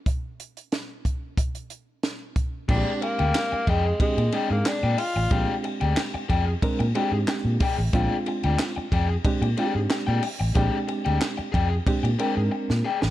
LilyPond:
<<
  \new Staff \with { instrumentName = "Overdriven electric guitar" } { \time 4/4 \key bes \mixolydian \tempo 4 = 92 r1 | <aes' d'' g''>16 r8 <aes' d'' g''>16 r8 <aes' d'' g''>16 r8. <aes' d'' g''>16 r8 <aes' d'' g''>16 r8 | <aes' d'' g''>16 r8 <aes' d'' g''>16 r8 <aes' d'' g''>16 r8. <aes' d'' g''>16 r8. <aes' d'' g''>16 r16 | <aes' d'' g''>16 r8 <aes' d'' g''>16 r8 <aes' d'' g''>16 r8. <aes' d'' g''>16 r8 <aes' d'' g''>16 r8 |
<aes' d'' g''>16 r8 <aes' d'' g''>16 r8 <aes' d'' g''>16 r8. <aes' d'' g''>16 r8. <aes' d'' g''>16 r16 | }
  \new Staff \with { instrumentName = "Reed electric piano" } { \time 4/4 \key bes \mixolydian r1 | <aes c' d' f' g'>4. r8 <aes c' d' g'>8 <aes c' d' aes'>4 r8 | <aes c' d' g'>4. r8 <aes c' d' bes'>8 <aes c' d' ges' g'>4 r8 | <aes c' d' f'>4. r8 <aes c' d' g'>8 <aes c' d' f' g'>4 r8 |
<aes c' d' g'>4. r8 <aes c' d' g'>8 <aes c' d' bes'>4 r8 | }
  \new Staff \with { instrumentName = "Tenor saxophone" } { \time 4/4 \key bes \mixolydian r1 | d'8 bes4 aes8 aes8. bes16 d'8 f'8~ | f'8 r2. r8 | r1 |
r1 | }
  \new Staff \with { instrumentName = "Fingered electric bass" } { \clef bass \time 4/4 \key bes \mixolydian r1 | bes,,16 r8 d,16 r8 f,8 r16 bes,16 r16 aes,16 r16 bes,16 r16 a,,16 | bes,,16 r8 d,16 r8 f,8 r16 bes,16 r16 aes,16 r16 bes,16 r16 a,,16 | bes,,16 r8 d,16 r8 f,8 r16 bes,16 r16 aes,16 r16 bes,16 r16 a,,16 |
bes,,16 r8 d,16 r8 f,8 r16 bes,16 r16 aes,16 r16 bes,16 r16 a,,16 | }
  \new DrumStaff \with { instrumentName = "Drums" } \drummode { \time 4/4 <hh bd>8 hh16 hh16 <hh sn>8 <hh bd>8 <hh bd>16 hh16 hh8 <hh sn>8 <hh bd>8 | <cymc bd>8 rb16 rb16 <hc rb sn>8 <bd rb>8 <bd rb>16 rb16 rb8 <hc rb sn>8 <hho rb>8 | <hhp bd rb>8 rb16 rb16 <hc rb sn>8 <bd rb>8 <bd rb>16 rb16 rb8 <hc rb sn>8 <hho bd rb>8 | <hhp bd rb>8 rb16 rb16 <hc rb sn>8 <bd rb>8 <bd rb>16 rb16 rb8 <hc rb sn>8 <hho rb>8 |
<hhp bd rb>8 rb16 rb16 <hc rb sn>8 <bd rb>8 <bd rb>16 rb16 rb8 r16 sn8 sn16 | }
>>